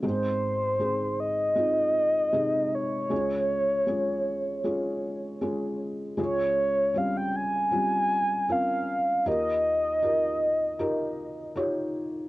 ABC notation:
X:1
M:4/4
L:1/16
Q:1/4=78
K:Dblyd
V:1 name="Soft synth lead"
c6 e8 d2- | d12- d2 z2 | d4 f g a6 f4 | e12 z4 |]
V:2 name="Felt piano"
[A,_C=CEA]4 [A,CEA]4 [A,CEF]4 [C,A,EA]4 | [A,DFA]4 [A,DFA]4 [A,DFA]4 [A,DFA]4 | [A,DFA]4 [G,CDF]4 [G,CDF]4 [CDFB]4 | [EFGB]4 [EFGB]4 [EFGB]4 [EFGd]4 |]
V:3 name="Felt piano" clef=bass
[A,,,A,,]16 | [D,,D,]16 | [D,,D,]16 | [E,,E,]16 |]